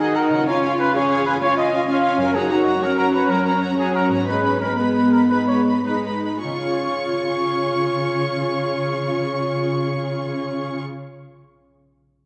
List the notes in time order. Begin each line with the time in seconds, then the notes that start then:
Already playing: D#3 F#4 A#4 D#5 F#5 A#5
0.00 D#3 D#4 F#4 G#4 D#5 F#5
0.14 A#4 D#5 F#5
0.18 F#4
0.29 C#3 F#4 F#5
0.34 C#4 D#5
0.38 F4
0.43 C#4 G#4
0.47 F4 C#5 F5 G#5
0.63 F4 F5 G#5
0.78 F4 B4 F5 G#5
0.93 C#4 F4 G#4 C#5 F5 G#5
1.10 F4 F5 G#5
1.26 F4 B4 F5 G#5
1.41 C#4 F4 C#5 F5 G#5
1.56 F4 D#5 F5 G#5
1.73 F4 F5 G#5
1.88 C#4 F4 F5 G#5
2.03 F4 F5 G#5
2.17 F#2 F4 A#4 F5 G#5
2.22 C#4
2.26 F#4
2.31 F#4 A#4 C#5
2.35 F#3 D#4 G#4 A#5
2.49 F#4 C#5 A#5
2.65 F#4 C#5 A#5
2.81 F#3 C#4 F#4 A#4 C#5 A#5
2.97 F#4 A#4 C#5 A#5
3.14 F#4 B4 C#5 A#5
3.28 F#3 F#4 A#4 C#5 A#5
3.46 F#4 A#4 C#5 A#5
3.62 F#4 C#5 A#5
3.77 F#3 F#4 G#4 C#5 A#5
3.94 F#4 A#4 C#5 A#5
4.09 G#2 F#4 C#5 A#5
4.13 B3
4.18 D#4
4.22 B4
4.27 G#3 D#4 B4 B5
4.44 D#4 B4 B5
4.61 D#4 A#4 B4 B5
4.77 G#3 B3 D#4 B4 B5
4.94 D#4 B4 B5
5.12 D#4 A#4 B4 B5
5.30 G#3 D#4 B4 B5
5.48 D#4 B4 C#5 B5
5.66 D#4 B4 B5
5.85 G#3 D#4 B4 B5
6.04 D#4 B4 B5
6.24 D#4 B4 B5
6.43 C#3 F4 G#4 C#5 C#6
6.51 C#4
6.58 F4
6.65 G#4
6.72 F5